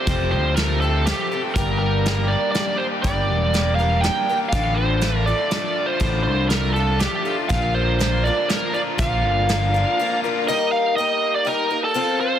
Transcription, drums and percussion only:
0.07 kick loud
0.07 closed hi-hat medium
0.57 snare medium
0.57 closed hi-hat medium
1.06 snare medium
1.06 closed hi-hat medium
1.56 kick loud
1.56 closed hi-hat medium
2.06 snare medium
2.06 closed hi-hat medium
2.55 snare medium
2.55 closed hi-hat medium
3.04 kick loud
3.04 closed hi-hat medium
3.54 snare medium
3.54 closed hi-hat medium
4.04 snare medium
4.04 closed hi-hat medium
4.52 kick loud
4.52 closed hi-hat medium
5.01 snare medium
5.01 closed hi-hat medium
5.51 snare medium
5.51 closed hi-hat medium
6.00 kick loud
6.00 closed hi-hat medium
6.50 snare medium
6.50 closed hi-hat medium
7.00 snare medium
7.00 closed hi-hat medium
7.50 kick loud
7.50 closed hi-hat medium
8.00 snare medium
8.00 closed hi-hat medium
8.49 snare medium
8.49 closed hi-hat medium
8.99 kick loud
8.99 closed hi-hat medium
9.49 snare medium
9.49 closed hi-hat medium

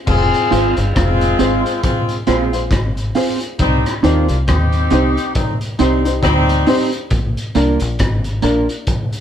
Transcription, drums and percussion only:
0.07 kick loud
0.07 crash medium
0.34 closed hi-hat medium
0.52 closed hi-hat medium
0.77 closed hi-hat medium
0.96 kick loud
0.96 cross-stick loud
0.96 closed hi-hat loud
1.21 closed hi-hat medium
1.39 closed hi-hat medium
1.66 closed hi-hat soft
1.83 kick loud
1.83 closed hi-hat loud
2.09 closed hi-hat medium
2.27 cross-stick medium
2.27 closed hi-hat medium
2.53 closed hi-hat medium
2.71 kick loud
2.71 cross-stick loud
2.71 closed hi-hat loud
2.97 closed hi-hat medium
3.15 open hi-hat medium
3.40 closed hi-hat medium
3.59 kick loud
3.59 closed hi-hat loud
3.86 cross-stick medium
3.86 closed hi-hat medium
4.04 closed hi-hat medium
4.28 closed hi-hat medium
4.48 kick loud
4.48 cross-stick loud
4.48 closed hi-hat medium
4.72 closed hi-hat medium
4.90 closed hi-hat medium
5.17 closed hi-hat soft
5.35 kick loud
5.35 closed hi-hat loud
5.61 closed hi-hat medium
5.79 closed hi-hat medium
6.05 closed hi-hat medium
6.23 kick loud
6.23 cross-stick loud
6.23 closed hi-hat loud
6.49 closed hi-hat medium
6.67 open hi-hat medium
6.92 closed hi-hat medium
7.10 kick loud
7.10 closed hi-hat loud
7.37 closed hi-hat medium
7.55 closed hi-hat medium
7.80 closed hi-hat medium
7.99 kick loud
7.99 cross-stick loud
7.99 closed hi-hat loud
8.24 closed hi-hat medium
8.42 closed hi-hat medium
8.69 closed hi-hat soft
8.87 kick loud
8.87 closed hi-hat loud
9.13 closed hi-hat medium

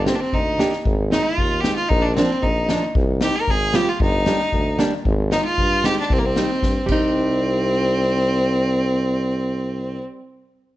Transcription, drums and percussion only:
0.06 snare loud
0.33 kick medium
0.59 snare medium
0.72 snare soft
0.85 kick loud
1.12 snare loud
1.38 kick medium
1.64 snare loud
1.90 kick loud
2.17 snare loud
2.43 kick medium
2.69 snare medium
2.95 kick loud
3.21 snare loud
3.48 kick medium
3.73 snare medium
4.00 kick loud
4.26 snare loud
4.39 snare soft
4.53 kick medium
4.79 snare medium
5.05 kick medium
5.32 snare medium
5.58 kick medium
5.84 snare medium
5.97 snare soft
6.10 kick loud
6.36 snare loud
6.62 kick medium
6.62 snare medium
6.88 kick medium
6.88 crash medium

